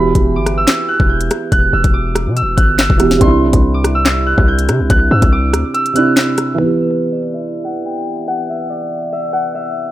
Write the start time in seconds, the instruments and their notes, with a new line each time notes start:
Already playing: 808-style bass E1, felt piano E3 B3 F#4 G4, harp B5 E6 F#6
0.15 808-style bass E1, kick, closed hi-hat
0.36 808-style bass G1, harp D6
0.46 cross-stick, closed hi-hat
0.58 harp E6
0.67 snare, clap, closed hi-hat
0.88 harp F#6
1.00 808-style bass E1, kick
1.09 harp G6
1.21 closed hi-hat
1.31 cross-stick, closed hi-hat
1.52 808-style bass E1, harp F#6, kick, closed hi-hat
1.73 808-style bass E1, harp E6
1.84 808-style bass E1, kick, closed hi-hat
1.94 harp D6
2.15 cross-stick, closed hi-hat
2.26 808-style bass B2
2.37 harp E6, closed hi-hat
2.42 808-style bass E1
2.57 808-style bass G1, harp F#6, kick, closed hi-hat
2.79 harp E6, snare, clap
2.90 808-style bass E1, kick
2.98 felt piano E3 B3 F#4, cross-stick, closed hi-hat
3.02 felt piano G4
3.11 snare
3.16 felt piano C3 C4
3.21 808-style bass C2, felt piano D4, harp C6, kick, closed hi-hat
3.25 felt piano E4
3.42 808-style bass B1
3.53 808-style bass C2, kick, closed hi-hat
3.74 harp D6
3.84 cross-stick, closed hi-hat
3.95 harp E6
4.06 snare, clap, closed hi-hat
4.26 harp F#6
4.38 808-style bass C2, kick
4.48 harp G6
4.59 closed hi-hat
4.69 808-style bass C3, cross-stick, closed hi-hat
4.80 808-style bass C2
4.90 808-style bass C2, harp F#6, kick, closed hi-hat
5.11 808-style bass G2, harp E6
5.22 808-style bass C2, kick, closed hi-hat
5.32 harp D6
5.53 808-style bass D2, cross-stick, closed hi-hat
5.74 harp E6, closed hi-hat
5.86 closed hi-hat
5.93 felt piano C3 C4 D4, harp F#6, closed hi-hat
5.98 felt piano E4
6.16 harp E6, snare, clap
6.38 cross-stick, closed hi-hat
6.55 felt piano E3 B3, harp B4
6.60 felt piano E4 G4
7.12 harp D5
7.34 harp E5
7.64 harp F#5
7.85 harp G5
8.28 harp F#5
8.49 harp E5
8.70 harp D5
9.13 harp E5
9.33 harp F#5
9.55 harp E5